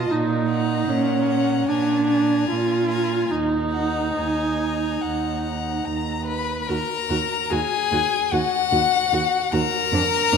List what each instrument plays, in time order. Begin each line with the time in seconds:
Already playing: viola F4, violin D#5 A5
0.10 cello A#2, viola D#4
0.50 violin F#5 A#5
0.88 cello A#2, viola C#4
1.29 violin F#5 A#5
1.68 cello A#2, viola D4, violin G#5 A#5
2.08 violin G#5 A#5
2.49 cello A#2, viola F4
2.89 violin G#5 A#5
3.31 cello D#2, viola D#4
3.73 violin F#5 A#5
4.15 cello D#2, violin G#5
4.61 violin A#5
5.02 cello D#2, violin F#5
5.45 violin A#5
5.85 cello D#2, violin A#5
6.26 violin B4 B5
6.62 violin B5
6.67 cello D#2, viola F#4, violin A#4 A#5
7.09 cello D#2, viola F#4
7.50 cello D#2, viola F#4, violin G#4 G#5
7.92 cello D#2, viola F#4
8.32 cello D#2, violin F#4 F#5, viola F#4
8.71 cello D#2, viola F#4
9.12 cello D#2, viola F#4
9.52 cello D#2, viola F#4, violin A#4 A#5
9.93 cello F2, viola D4
10.33 cello F2, viola D4